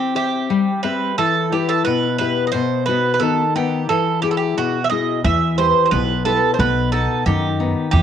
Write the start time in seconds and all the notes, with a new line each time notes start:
Already playing: C4 G4
0.15 G4 C5 E5
0.50 G3
0.83 C4 G4 B4 E5
1.18 E3 A4
1.52 E4 G4 B4
1.69 A4
1.85 B2 B4
2.18 E4 G4 B4
2.47 D#5
2.52 B2 C5
2.86 B3 D#4 F#4 B4
3.14 B4
3.20 D#3 A4
3.55 B3 D#4 G4 F#5
3.89 E3 A4
4.22 E4 F#4 G4 G#4
4.31 A4
4.37 G4
4.57 B2 F#4
4.84 E5
4.90 E4 F#4 G#4 D#5
5.24 E2 E3 E5
5.58 E4 G4 B4 C5
5.86 C5
5.91 B1 B2 B4
6.25 E4 G4 A4 B4
6.54 C5
6.59 B1 B2 B4
6.92 B3 D#4 A4 F#5
7.26 F#2 D#3 G4
7.60 B3 D#4 F#5
7.91 E2 E3 G4